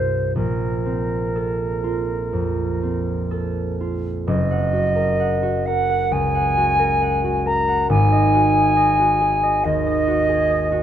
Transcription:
0, 0, Header, 1, 3, 480
1, 0, Start_track
1, 0, Tempo, 981997
1, 172, Time_signature, 4, 2, 24, 8
1, 2089, Tempo, 921659
1, 3049, Tempo, 894188
1, 4009, Tempo, 869565
1, 5622, End_track
2, 0, Start_track
2, 0, Title_t, "Flute"
2, 0, Program_c, 0, 73
2, 0, Note_on_c, 0, 72, 47
2, 172, Note_off_c, 0, 72, 0
2, 176, Note_on_c, 0, 70, 45
2, 1840, Note_off_c, 0, 70, 0
2, 2088, Note_on_c, 0, 75, 64
2, 2809, Note_on_c, 0, 78, 61
2, 2817, Note_off_c, 0, 75, 0
2, 3052, Note_on_c, 0, 80, 75
2, 3060, Note_off_c, 0, 78, 0
2, 3775, Note_on_c, 0, 82, 59
2, 3783, Note_off_c, 0, 80, 0
2, 4004, Note_off_c, 0, 82, 0
2, 4007, Note_on_c, 0, 80, 73
2, 4967, Note_on_c, 0, 75, 72
2, 4975, Note_off_c, 0, 80, 0
2, 5622, Note_off_c, 0, 75, 0
2, 5622, End_track
3, 0, Start_track
3, 0, Title_t, "Harp"
3, 0, Program_c, 1, 46
3, 0, Note_on_c, 1, 36, 40
3, 0, Note_on_c, 1, 43, 27
3, 0, Note_on_c, 1, 63, 25
3, 0, Note_on_c, 1, 65, 25
3, 0, Note_on_c, 1, 70, 28
3, 173, Note_on_c, 1, 34, 33
3, 188, Note_off_c, 1, 36, 0
3, 190, Note_off_c, 1, 43, 0
3, 193, Note_off_c, 1, 63, 0
3, 418, Note_on_c, 1, 60, 24
3, 663, Note_on_c, 1, 69, 26
3, 892, Note_off_c, 1, 65, 0
3, 898, Note_on_c, 1, 65, 24
3, 1138, Note_on_c, 1, 41, 24
3, 1376, Note_off_c, 1, 60, 0
3, 1381, Note_on_c, 1, 60, 22
3, 1602, Note_off_c, 1, 70, 0
3, 1612, Note_off_c, 1, 69, 0
3, 1618, Note_on_c, 1, 69, 27
3, 1854, Note_off_c, 1, 65, 0
3, 1860, Note_on_c, 1, 65, 24
3, 2080, Note_off_c, 1, 34, 0
3, 2089, Note_on_c, 1, 30, 44
3, 2110, Note_off_c, 1, 69, 0
3, 2111, Note_off_c, 1, 41, 0
3, 2111, Note_off_c, 1, 65, 0
3, 2112, Note_off_c, 1, 60, 0
3, 2211, Note_on_c, 1, 78, 36
3, 2325, Note_on_c, 1, 66, 33
3, 2444, Note_on_c, 1, 70, 35
3, 2563, Note_off_c, 1, 78, 0
3, 2569, Note_on_c, 1, 78, 36
3, 2683, Note_off_c, 1, 66, 0
3, 2689, Note_on_c, 1, 66, 33
3, 2811, Note_off_c, 1, 70, 0
3, 2817, Note_on_c, 1, 70, 35
3, 2927, Note_off_c, 1, 78, 0
3, 2933, Note_on_c, 1, 78, 36
3, 3047, Note_on_c, 1, 37, 35
3, 3165, Note_off_c, 1, 78, 0
3, 3171, Note_on_c, 1, 78, 37
3, 3287, Note_off_c, 1, 66, 0
3, 3293, Note_on_c, 1, 66, 34
3, 3403, Note_off_c, 1, 70, 0
3, 3410, Note_on_c, 1, 70, 35
3, 3529, Note_off_c, 1, 78, 0
3, 3535, Note_on_c, 1, 78, 38
3, 3647, Note_off_c, 1, 66, 0
3, 3653, Note_on_c, 1, 66, 36
3, 3762, Note_off_c, 1, 70, 0
3, 3769, Note_on_c, 1, 70, 35
3, 3880, Note_off_c, 1, 78, 0
3, 3887, Note_on_c, 1, 78, 36
3, 4003, Note_on_c, 1, 32, 45
3, 4028, Note_off_c, 1, 37, 0
3, 4028, Note_off_c, 1, 70, 0
3, 4030, Note_off_c, 1, 30, 0
3, 4129, Note_on_c, 1, 75, 39
3, 4241, Note_off_c, 1, 66, 0
3, 4248, Note_on_c, 1, 66, 35
3, 4364, Note_on_c, 1, 68, 35
3, 4478, Note_off_c, 1, 75, 0
3, 4484, Note_on_c, 1, 75, 38
3, 4601, Note_off_c, 1, 66, 0
3, 4608, Note_on_c, 1, 66, 37
3, 4722, Note_off_c, 1, 68, 0
3, 4729, Note_on_c, 1, 68, 37
3, 4845, Note_off_c, 1, 75, 0
3, 4852, Note_on_c, 1, 75, 36
3, 4973, Note_on_c, 1, 39, 36
3, 5085, Note_off_c, 1, 75, 0
3, 5091, Note_on_c, 1, 75, 43
3, 5201, Note_off_c, 1, 66, 0
3, 5208, Note_on_c, 1, 66, 39
3, 5316, Note_off_c, 1, 68, 0
3, 5323, Note_on_c, 1, 68, 41
3, 5436, Note_off_c, 1, 75, 0
3, 5443, Note_on_c, 1, 75, 41
3, 5554, Note_off_c, 1, 66, 0
3, 5560, Note_on_c, 1, 66, 36
3, 5622, Note_off_c, 1, 32, 0
3, 5622, Note_off_c, 1, 39, 0
3, 5622, Note_off_c, 1, 66, 0
3, 5622, Note_off_c, 1, 68, 0
3, 5622, Note_off_c, 1, 75, 0
3, 5622, Note_off_c, 1, 78, 0
3, 5622, End_track
0, 0, End_of_file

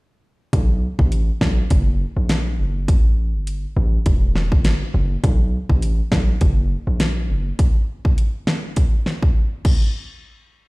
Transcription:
0, 0, Header, 1, 3, 480
1, 0, Start_track
1, 0, Tempo, 588235
1, 432, Time_signature, 4, 2, 24, 8
1, 8715, End_track
2, 0, Start_track
2, 0, Title_t, "808-style bass"
2, 0, Program_c, 0, 38
2, 433, Note_on_c, 0, 35, 107
2, 715, Note_off_c, 0, 35, 0
2, 807, Note_on_c, 0, 33, 96
2, 1068, Note_off_c, 0, 33, 0
2, 1152, Note_on_c, 0, 35, 104
2, 1334, Note_off_c, 0, 35, 0
2, 1393, Note_on_c, 0, 30, 106
2, 1675, Note_off_c, 0, 30, 0
2, 1767, Note_on_c, 0, 34, 81
2, 2112, Note_on_c, 0, 30, 97
2, 2124, Note_off_c, 0, 34, 0
2, 2352, Note_on_c, 0, 33, 104
2, 2364, Note_off_c, 0, 30, 0
2, 2727, Note_on_c, 0, 31, 92
2, 2739, Note_off_c, 0, 33, 0
2, 2988, Note_off_c, 0, 31, 0
2, 3073, Note_on_c, 0, 33, 96
2, 3254, Note_off_c, 0, 33, 0
2, 3314, Note_on_c, 0, 28, 105
2, 3686, Note_on_c, 0, 31, 97
2, 3699, Note_off_c, 0, 28, 0
2, 3948, Note_off_c, 0, 31, 0
2, 4033, Note_on_c, 0, 30, 108
2, 4214, Note_off_c, 0, 30, 0
2, 4273, Note_on_c, 0, 35, 113
2, 4556, Note_off_c, 0, 35, 0
2, 4647, Note_on_c, 0, 33, 98
2, 4908, Note_off_c, 0, 33, 0
2, 4992, Note_on_c, 0, 35, 102
2, 5174, Note_off_c, 0, 35, 0
2, 5234, Note_on_c, 0, 30, 111
2, 5516, Note_off_c, 0, 30, 0
2, 5607, Note_on_c, 0, 34, 81
2, 5952, Note_on_c, 0, 30, 99
2, 5965, Note_off_c, 0, 34, 0
2, 6134, Note_off_c, 0, 30, 0
2, 8715, End_track
3, 0, Start_track
3, 0, Title_t, "Drums"
3, 433, Note_on_c, 9, 36, 111
3, 434, Note_on_c, 9, 42, 77
3, 514, Note_off_c, 9, 36, 0
3, 515, Note_off_c, 9, 42, 0
3, 807, Note_on_c, 9, 36, 85
3, 889, Note_off_c, 9, 36, 0
3, 913, Note_on_c, 9, 42, 70
3, 994, Note_off_c, 9, 42, 0
3, 1152, Note_on_c, 9, 36, 99
3, 1152, Note_on_c, 9, 38, 117
3, 1234, Note_off_c, 9, 36, 0
3, 1234, Note_off_c, 9, 38, 0
3, 1391, Note_on_c, 9, 42, 74
3, 1393, Note_on_c, 9, 36, 93
3, 1472, Note_off_c, 9, 42, 0
3, 1475, Note_off_c, 9, 36, 0
3, 1871, Note_on_c, 9, 42, 82
3, 1873, Note_on_c, 9, 38, 119
3, 1953, Note_off_c, 9, 42, 0
3, 1955, Note_off_c, 9, 38, 0
3, 2352, Note_on_c, 9, 36, 104
3, 2353, Note_on_c, 9, 42, 78
3, 2434, Note_off_c, 9, 36, 0
3, 2435, Note_off_c, 9, 42, 0
3, 2833, Note_on_c, 9, 42, 70
3, 2914, Note_off_c, 9, 42, 0
3, 3311, Note_on_c, 9, 42, 76
3, 3314, Note_on_c, 9, 36, 92
3, 3393, Note_off_c, 9, 42, 0
3, 3395, Note_off_c, 9, 36, 0
3, 3554, Note_on_c, 9, 38, 72
3, 3635, Note_off_c, 9, 38, 0
3, 3686, Note_on_c, 9, 36, 101
3, 3768, Note_off_c, 9, 36, 0
3, 3791, Note_on_c, 9, 42, 78
3, 3793, Note_on_c, 9, 38, 120
3, 3872, Note_off_c, 9, 42, 0
3, 3874, Note_off_c, 9, 38, 0
3, 4273, Note_on_c, 9, 36, 111
3, 4273, Note_on_c, 9, 42, 75
3, 4354, Note_off_c, 9, 36, 0
3, 4355, Note_off_c, 9, 42, 0
3, 4647, Note_on_c, 9, 36, 82
3, 4729, Note_off_c, 9, 36, 0
3, 4752, Note_on_c, 9, 42, 69
3, 4834, Note_off_c, 9, 42, 0
3, 4991, Note_on_c, 9, 38, 113
3, 4992, Note_on_c, 9, 36, 98
3, 5073, Note_off_c, 9, 38, 0
3, 5074, Note_off_c, 9, 36, 0
3, 5230, Note_on_c, 9, 42, 74
3, 5233, Note_on_c, 9, 36, 95
3, 5311, Note_off_c, 9, 42, 0
3, 5315, Note_off_c, 9, 36, 0
3, 5710, Note_on_c, 9, 42, 82
3, 5712, Note_on_c, 9, 38, 117
3, 5792, Note_off_c, 9, 42, 0
3, 5794, Note_off_c, 9, 38, 0
3, 6193, Note_on_c, 9, 36, 109
3, 6193, Note_on_c, 9, 42, 79
3, 6275, Note_off_c, 9, 36, 0
3, 6275, Note_off_c, 9, 42, 0
3, 6568, Note_on_c, 9, 36, 89
3, 6650, Note_off_c, 9, 36, 0
3, 6674, Note_on_c, 9, 42, 70
3, 6755, Note_off_c, 9, 42, 0
3, 6913, Note_on_c, 9, 38, 112
3, 6994, Note_off_c, 9, 38, 0
3, 7151, Note_on_c, 9, 42, 79
3, 7154, Note_on_c, 9, 36, 90
3, 7232, Note_off_c, 9, 42, 0
3, 7236, Note_off_c, 9, 36, 0
3, 7394, Note_on_c, 9, 38, 74
3, 7476, Note_off_c, 9, 38, 0
3, 7528, Note_on_c, 9, 36, 96
3, 7609, Note_off_c, 9, 36, 0
3, 7873, Note_on_c, 9, 49, 91
3, 7874, Note_on_c, 9, 36, 107
3, 7955, Note_off_c, 9, 36, 0
3, 7955, Note_off_c, 9, 49, 0
3, 8715, End_track
0, 0, End_of_file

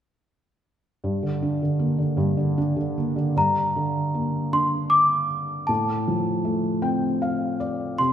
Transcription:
0, 0, Header, 1, 3, 480
1, 0, Start_track
1, 0, Key_signature, -2, "minor"
1, 0, Tempo, 773196
1, 644, Time_signature, 3, 2, 24, 8
1, 5046, End_track
2, 0, Start_track
2, 0, Title_t, "Celesta"
2, 0, Program_c, 0, 8
2, 2096, Note_on_c, 0, 82, 73
2, 2792, Note_off_c, 0, 82, 0
2, 2813, Note_on_c, 0, 84, 81
2, 2921, Note_off_c, 0, 84, 0
2, 3041, Note_on_c, 0, 86, 87
2, 3519, Note_on_c, 0, 81, 70
2, 3542, Note_off_c, 0, 86, 0
2, 4216, Note_off_c, 0, 81, 0
2, 4957, Note_on_c, 0, 84, 80
2, 5046, Note_off_c, 0, 84, 0
2, 5046, End_track
3, 0, Start_track
3, 0, Title_t, "Felt piano"
3, 0, Program_c, 1, 0
3, 643, Note_on_c, 1, 43, 53
3, 762, Note_on_c, 1, 50, 39
3, 772, Control_c, 1, 64, 127
3, 884, Note_on_c, 1, 62, 45
3, 998, Note_off_c, 1, 50, 0
3, 1007, Note_on_c, 1, 50, 41
3, 1113, Note_on_c, 1, 58, 47
3, 1221, Note_off_c, 1, 50, 0
3, 1230, Note_on_c, 1, 50, 45
3, 1338, Note_off_c, 1, 43, 0
3, 1347, Note_on_c, 1, 43, 64
3, 1463, Note_off_c, 1, 50, 0
3, 1472, Note_on_c, 1, 50, 44
3, 1590, Note_off_c, 1, 62, 0
3, 1599, Note_on_c, 1, 62, 49
3, 1706, Note_off_c, 1, 50, 0
3, 1716, Note_on_c, 1, 50, 45
3, 1839, Note_off_c, 1, 58, 0
3, 1848, Note_on_c, 1, 58, 46
3, 1952, Note_off_c, 1, 50, 0
3, 1961, Note_on_c, 1, 50, 45
3, 2057, Note_off_c, 1, 43, 0
3, 2071, Note_off_c, 1, 62, 0
3, 2081, Note_off_c, 1, 50, 0
3, 2082, Note_off_c, 1, 58, 0
3, 2088, Note_on_c, 1, 43, 57
3, 2094, Control_c, 1, 64, 0
3, 2188, Control_c, 1, 64, 127
3, 2336, Note_on_c, 1, 50, 43
3, 2573, Note_on_c, 1, 58, 45
3, 2811, Note_on_c, 1, 62, 51
3, 3271, Note_off_c, 1, 50, 0
3, 3509, Note_off_c, 1, 58, 0
3, 3510, Note_off_c, 1, 43, 0
3, 3511, Note_off_c, 1, 62, 0
3, 3531, Note_on_c, 1, 45, 55
3, 3542, Control_c, 1, 64, 0
3, 3638, Control_c, 1, 64, 127
3, 3772, Note_on_c, 1, 53, 46
3, 4002, Note_on_c, 1, 57, 45
3, 4233, Note_on_c, 1, 60, 51
3, 4235, Note_on_c, 1, 79, 61
3, 4461, Note_off_c, 1, 79, 0
3, 4481, Note_on_c, 1, 77, 59
3, 4696, Note_off_c, 1, 53, 0
3, 4703, Note_off_c, 1, 77, 0
3, 4719, Note_on_c, 1, 74, 57
3, 4930, Note_off_c, 1, 57, 0
3, 4930, Note_off_c, 1, 60, 0
3, 4933, Note_off_c, 1, 45, 0
3, 4941, Note_off_c, 1, 74, 0
3, 4962, Note_on_c, 1, 48, 60
3, 4968, Control_c, 1, 64, 0
3, 5046, Note_off_c, 1, 48, 0
3, 5046, End_track
0, 0, End_of_file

